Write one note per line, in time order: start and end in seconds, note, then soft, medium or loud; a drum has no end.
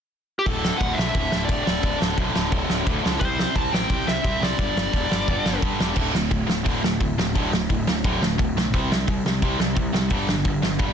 0.39 0.46 G4 medium
0.46 0.70 D1 medium
0.46 0.80 D2 medium
0.46 0.80 A2 medium
0.46 0.81 D3 medium
0.46 0.78 A4 medium
0.46 kick loud
0.46 open hi-hat medium
0.65 snare loud
0.78 0.92 D1 medium
0.78 0.98 D2 medium
0.78 0.96 A2 medium
0.78 0.96 D3 medium
0.78 0.97 F#5 medium
0.78 kick loud
0.78 open hi-hat medium
0.94 1.14 A2 medium
0.94 1.15 D3 medium
0.94 1.44 E5 medium
0.98 1.10 B1 medium
0.98 1.15 D2 medium
0.98 snare loud
1.15 1.27 D1 medium
1.15 1.49 D2 medium
1.15 1.50 A2 medium
1.15 1.50 D3 medium
1.15 kick loud
1.15 open hi-hat medium
1.32 1.45 D1 medium
1.32 snare loud
1.45 1.60 D1 medium
1.45 1.62 D5 medium
1.45 open hi-hat medium
1.49 1.67 D2 medium
1.49 1.66 A2 medium
1.49 1.65 D3 medium
1.49 kick loud
1.63 1.85 D3 medium
1.63 1.97 D5 medium
1.63 snare loud
1.68 1.79 D1 medium
1.68 1.83 D2 medium
1.68 1.84 A2 medium
1.83 1.95 D1 medium
1.83 2.17 D2 medium
1.83 2.17 A2 medium
1.83 2.18 D3 loud
1.83 kick loud
1.83 open hi-hat medium
2.02 2.13 D1 medium
2.02 snare loud
2.17 2.29 B1 medium
2.17 2.34 D2 medium
2.17 2.35 A2 medium
2.17 2.34 D3 medium
2.17 kick loud
2.17 open hi-hat soft
2.35 2.48 D1 medium
2.35 2.50 D2 medium
2.35 2.51 A2 medium
2.35 2.51 D3 medium
2.35 snare loud
2.51 2.64 D1 medium
2.51 2.85 D2 loud
2.51 2.86 A2 loud
2.51 2.86 D3 loud
2.51 kick loud
2.51 open hi-hat medium
2.69 2.81 D1 medium
2.69 snare medium
2.86 3.03 D2 medium
2.86 2.99 D2 medium
2.86 3.02 A2 medium
2.86 3.02 D3 medium
2.86 kick loud
2.86 open hi-hat soft
3.03 3.16 C#2 medium
3.03 3.20 D2 medium
3.03 3.20 A2 medium
3.03 3.20 D3 loud
3.03 snare loud
3.20 3.45 C2 medium
3.20 3.54 C3 medium
3.20 3.55 G3 loud
3.20 3.55 C4 medium
3.20 3.56 C5 loud
3.20 kick loud
3.20 open hi-hat medium
3.39 snare medium
3.55 3.68 C2 medium
3.55 3.72 C3 medium
3.55 3.72 G3 medium
3.55 3.70 C4 medium
3.55 3.73 A5 loud
3.55 kick medium
3.55 open hi-hat medium
3.71 3.84 A1 medium
3.71 3.88 C3 medium
3.71 3.88 G3 medium
3.71 3.89 C4 loud
3.71 4.08 G5 medium
3.71 snare loud
3.89 4.02 C2 medium
3.89 4.23 C3 medium
3.89 4.24 G3 medium
3.89 4.24 C4 medium
3.89 kick loud
3.89 open hi-hat medium
4.06 4.19 C2 medium
4.06 4.43 E5 medium
4.06 snare medium
4.24 4.36 C2 medium
4.24 4.40 C3 medium
4.24 4.40 G3 medium
4.24 4.39 C4 medium
4.24 kick loud
4.24 open hi-hat medium
4.41 4.53 C2 medium
4.41 4.58 C3 medium
4.41 4.58 G3 medium
4.41 4.57 C4 medium
4.41 5.60 D5 medium
4.41 snare loud
4.58 4.70 G1 medium
4.58 4.91 G2 medium
4.58 4.92 D3 medium
4.58 4.92 G3 medium
4.58 kick loud
4.58 open hi-hat medium
4.76 4.88 G1 loud
4.76 snare loud
4.92 5.05 E1 medium
4.92 5.09 G2 medium
4.92 5.08 D3 medium
4.92 5.08 G3 medium
4.92 kick loud
4.92 open hi-hat medium
5.09 5.23 G1 medium
5.09 5.26 G2 medium
5.09 5.27 D3 medium
5.09 5.27 G3 medium
5.09 snare loud
5.28 5.40 G1 medium
5.28 5.60 G2 loud
5.28 5.61 D3 loud
5.28 5.61 G3 medium
5.28 kick loud
5.28 open hi-hat medium
5.45 5.57 G1 medium
5.45 snare loud
5.61 5.79 G2 medium
5.61 5.74 G2 medium
5.61 5.79 D3 medium
5.61 5.78 G3 medium
5.61 kick loud
5.61 open hi-hat medium
5.79 5.91 E1 medium
5.79 5.96 G2 medium
5.79 5.96 D3 medium
5.79 5.96 G3 medium
5.79 snare loud
5.96 6.28 D1 loud
5.96 6.12 D2 medium
5.96 6.12 A2 medium
5.96 6.13 D3 medium
5.96 kick loud
5.96 crash loud
6.13 6.29 D2 medium
6.13 6.29 A2 medium
6.13 snare loud
6.31 6.47 D1 medium
6.31 6.46 D2 medium
6.31 6.46 A2 medium
6.31 kick loud
6.31 open hi-hat medium
6.47 6.64 D1 medium
6.47 6.63 D2 medium
6.47 6.64 A2 medium
6.47 snare loud
6.64 6.82 D1 medium
6.64 6.81 D2 loud
6.64 6.81 A2 medium
6.64 6.82 D3 loud
6.64 kick loud
6.64 open hi-hat medium
6.82 6.99 D1 medium
6.82 6.98 D2 medium
6.82 6.98 A2 medium
6.82 snare loud
7.00 7.16 D1 medium
7.00 7.16 D2 medium
7.00 7.16 A2 medium
7.00 kick loud
7.00 open hi-hat medium
7.17 7.33 D1 loud
7.17 7.33 D2 medium
7.17 7.34 A2 medium
7.17 snare loud
7.35 7.66 D1 loud
7.35 7.51 D2 medium
7.35 7.51 A2 medium
7.35 7.52 D3 medium
7.35 kick loud
7.35 open hi-hat medium
7.52 7.68 D2 medium
7.52 7.68 A2 medium
7.52 snare loud
7.69 7.85 D1 medium
7.69 7.85 D2 medium
7.69 7.85 A2 medium
7.69 kick loud
7.69 open hi-hat medium
7.87 8.03 D1 medium
7.87 8.02 D2 medium
7.87 8.03 A2 medium
7.87 snare loud
8.04 8.20 D1 medium
8.04 8.19 D2 medium
8.04 8.21 A2 medium
8.04 8.21 D3 loud
8.04 kick loud
8.04 open hi-hat medium
8.21 8.37 D1 medium
8.21 8.36 D2 medium
8.21 8.37 A2 medium
8.21 snare loud
8.38 8.55 D1 medium
8.38 8.54 D2 medium
8.38 8.54 A2 medium
8.38 kick loud
8.38 open hi-hat medium
8.56 8.71 B1 medium
8.56 8.72 D2 medium
8.56 8.72 A2 medium
8.56 snare loud
8.74 9.05 C2 loud
8.74 8.90 C3 medium
8.74 8.90 G3 medium
8.74 8.90 C4 medium
8.74 kick loud
8.74 open hi-hat medium
8.92 9.07 C3 medium
8.92 9.07 G3 medium
8.92 snare loud
9.08 9.24 C2 medium
9.08 9.23 C3 medium
9.08 9.23 G3 medium
9.08 kick loud
9.08 open hi-hat medium
9.25 9.40 C2 medium
9.25 9.41 C3 medium
9.25 9.41 G3 medium
9.25 snare loud
9.42 9.58 C2 medium
9.42 9.58 C3 medium
9.42 9.59 G3 loud
9.42 9.59 C4 medium
9.42 kick loud
9.42 open hi-hat medium
9.58 9.74 C2 medium
9.58 9.75 C3 medium
9.58 9.75 G3 medium
9.58 snare loud
9.76 9.93 C2 medium
9.76 9.92 C3 medium
9.76 9.92 G3 medium
9.76 kick loud
9.76 open hi-hat medium
9.93 10.09 C2 medium
9.93 10.09 C3 medium
9.93 10.09 G3 medium
9.93 snare loud
10.10 10.42 G1 loud
10.10 10.27 G2 medium
10.10 10.27 D3 medium
10.10 10.28 G3 medium
10.10 kick loud
10.10 open hi-hat medium
10.28 10.43 G2 medium
10.28 10.44 D3 medium
10.28 snare loud
10.45 10.61 G1 medium
10.45 10.61 G2 medium
10.45 10.61 D3 medium
10.45 kick loud
10.45 open hi-hat medium
10.62 10.78 G1 medium
10.62 10.77 G2 medium
10.62 10.78 D3 medium
10.62 snare loud
10.79 10.93 G1 medium
10.79 10.93 G2 medium
10.79 10.93 D3 medium
10.79 10.93 G3 loud
10.79 kick loud
10.79 open hi-hat medium